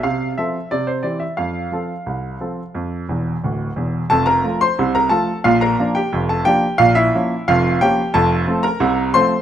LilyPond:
<<
  \new Staff \with { instrumentName = "Grand piano" } { \time 2/4 \key f \major \tempo 4 = 89 f''8 e''8 d''16 c''16 d''16 e''16 | f''2~ | f''4 r4 | <a' a''>16 <bes' bes''>8 <c'' c'''>8 <bes' bes''>16 <a' a''>8 |
<f' f''>16 <bes' bes''>8 <g' g''>8 <a' a''>16 <g' g''>8 | <f' f''>16 <e' e''>8. <f' f''>8 <g' g''>8 | <a' a''>8. <bes' bes''>8. <c'' c'''>8 | }
  \new Staff \with { instrumentName = "Grand piano" } { \clef bass \time 2/4 \key f \major c8 <f c' a'>8 c8 <e c' g'>8 | f,8 <f c' a'>8 c,8 <f c' a'>8 | f,8 <e,, e,>8 <d,, d,>8 <e,, e,>8 | <f,, f,>8 <f a f'>8 <c, c>8 <f a f'>8 |
<bes,, bes,>8 <f bes d'>8 <f,, f,>8 <f bes d'>8 | <bes,, bes,>8 <f bes des'>8 <f,, f,>8 <f bes des'>8 | <f,, f,>8 <f a c'>8 <c, c>8 <f a c'>8 | }
>>